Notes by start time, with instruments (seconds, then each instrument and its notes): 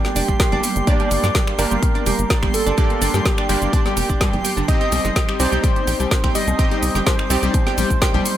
Already playing: analog synth pad G3 A#3 G4, supersaw synth A#3 D4 G4 D5, synth pluck G4, analog synth lead G4, synth texture C6
0.04 snare, closed hi-hat, high conga
0.16 analog synth bass F1, synth pluck D4, open hi-hat, cabasa
0.28 analog synth bass G1, synth pluck G3, kick, closed hi-hat, cabasa, high woodblock
0.40 kick, snare, closed hi-hat, cabasa
0.52 analog synth bass G1, synth pluck D4, closed hi-hat, high conga, low conga, high woodblock
0.64 synth pluck G3, open hi-hat, cabasa
0.76 analog synth bass G1, closed hi-hat, cabasa, high woodblock
0.87 supersaw synth A#3 D4 G4 D5, synth pluck D4 D5, analog synth lead D5, kick, closed hi-hat, cabasa
1.00 synth pluck G3, closed hi-hat, high conga, high woodblock
1.11 analog synth bass G1, open hi-hat, cabasa
1.23 analog synth bass G2, synth pluck D4, snare, closed hi-hat, low conga, cabasa
1.35 synth pluck G3, kick, snare, closed hi-hat, cabasa, high woodblock
1.47 finger snap, closed hi-hat
1.59 analog synth bass G1, supersaw synth A#3 D4 G4 D5, synth pluck D4 A#4, analog synth lead A#4, open hi-hat, cabasa, high woodblock
1.71 analog synth bass G1, synth pluck G3, closed hi-hat, high conga, cabasa
1.83 kick, closed hi-hat, cabasa, high woodblock
1.94 synth pluck D4, closed hi-hat, high conga
2.06 analog synth bass F1, synth pluck G3, open hi-hat, cabasa, high woodblock
2.19 analog synth bass G1, closed hi-hat, cabasa
2.30 synth pluck D4, kick, snare, closed hi-hat, cabasa
2.42 analog synth bass G1, synth pluck G3, finger snap, kick, closed hi-hat, high conga, high woodblock
2.54 analog synth lead A4, synth pluck A4, open hi-hat, cabasa
2.66 analog synth bass G1, synth pluck D4, closed hi-hat, cabasa, high woodblock
2.78 synth pluck G3, supersaw synth A#3 D4 G4 D5, kick, closed hi-hat, cabasa
2.90 closed hi-hat, high conga, high woodblock
3.02 analog synth bass G1, synth pluck D4, open hi-hat, cabasa
3.14 analog synth bass G2, synth pluck G3, snare, closed hi-hat, low conga, cabasa, high woodblock
3.25 analog synth lead G4, synth pluck G4, kick, snare, closed hi-hat, cabasa
3.38 synth pluck D4, finger snap, closed hi-hat
3.49 analog synth bass G1, synth pluck G3, supersaw synth A#3 D4 G4 D5, open hi-hat, cabasa, high woodblock
3.61 analog synth bass G1, closed hi-hat, high conga, cabasa
3.73 synth pluck D4, kick, closed hi-hat, cabasa, high woodblock
3.86 synth pluck G3, snare, closed hi-hat, high conga
3.97 analog synth bass F1, synth pluck G4, open hi-hat, cabasa, high woodblock
4.09 analog synth bass G1, synth pluck D4, kick, closed hi-hat, cabasa
4.21 synth pluck G2, kick, snare, closed hi-hat, cabasa, high woodblock
4.33 analog synth bass G1, closed hi-hat, high conga, low conga
4.45 synth pluck G4, open hi-hat, cabasa
4.57 analog synth bass G1, synth pluck D3, closed hi-hat, cabasa, high woodblock
4.68 analog synth pad G3 C4 D#4, supersaw synth C4 D#4 G4 D#5, analog synth lead D#5, synth pluck D#5, kick, closed hi-hat, cabasa
4.80 synth pluck G4, closed hi-hat, high conga
4.92 analog synth bass C2, synth pluck G3, open hi-hat, cabasa, high woodblock
5.05 analog synth bass G1, snare, closed hi-hat, low conga, cabasa
5.16 synth pluck G4, kick, snare, closed hi-hat, cabasa, high woodblock
5.29 synth pluck G3, finger snap, closed hi-hat
5.39 analog synth bass C2, supersaw synth C4 D#4 G4 D5, analog synth lead C5, synth pluck C5, open hi-hat, cabasa, high woodblock
5.52 analog synth bass C2, synth pluck G4, closed hi-hat, high conga, cabasa
5.64 synth pluck G3, kick, closed hi-hat, cabasa
5.76 closed hi-hat, high conga, high woodblock
5.87 analog synth bass A#1, synth pluck G4, open hi-hat, cabasa
6.00 analog synth bass C2, synth pluck G3, closed hi-hat, cabasa, high woodblock
6.11 kick, snare, closed hi-hat, cabasa
6.23 analog synth bass C2, synth pluck G4, finger snap, kick, closed hi-hat, high conga, high woodblock
6.35 synth pluck G3 D#5, analog synth lead D#5, open hi-hat, cabasa
6.47 analog synth bass C2, closed hi-hat, cabasa, high woodblock
6.59 supersaw synth C4 D#4 G4 D#5, synth pluck G4, kick, closed hi-hat, cabasa
6.71 synth pluck G3, closed hi-hat, high conga
6.82 analog synth bass C2, open hi-hat, cabasa, high woodblock
6.94 analog synth bass G1, synth pluck G4, snare, closed hi-hat, low conga, cabasa
7.06 synth pluck G3 C5, analog synth lead C5, kick, snare, closed hi-hat, cabasa, high woodblock
7.19 finger snap, closed hi-hat
7.30 analog synth bass C2, supersaw synth C4 D#4 G4 D5, synth pluck G4, open hi-hat, cabasa, high woodblock
7.42 analog synth bass C2, synth pluck G3, closed hi-hat, high conga, cabasa
7.54 kick, closed hi-hat, cabasa, high woodblock
7.66 synth pluck G4, snare, closed hi-hat, high conga
7.78 analog synth bass A#1, synth pluck G3, open hi-hat, cabasa
7.90 analog synth bass C2, kick, closed hi-hat, cabasa, high woodblock
8.02 synth pluck G4, kick, snare, closed hi-hat, cabasa
8.13 analog synth bass C2, synth pluck G3, closed hi-hat, high conga, low conga, high woodblock
8.26 open hi-hat, cabasa